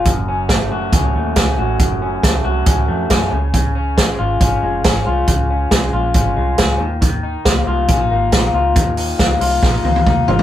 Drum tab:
HH |x---x---x---x---|x---x---x---x---|x---x---x---x---|x---x---x---x---|
SD |----o-------o---|----o-------o---|----o-------o---|----o-------o---|
T1 |----------------|----------------|----------------|----------------|
T2 |----------------|----------------|----------------|----------------|
FT |----------------|----------------|----------------|----------------|
BD |o---o---o---o---|o---o---o---o---|o---o---o---o---|o---o---o---o---|

HH |x---x---x---x---|x-o-x-o---------|
SD |----o-------o---|----o---o-------|
T1 |----------------|----------oo----|
T2 |----------------|------------o---|
FT |----------------|--------------oo|
BD |o---o---o---o---|o---o---o---o---|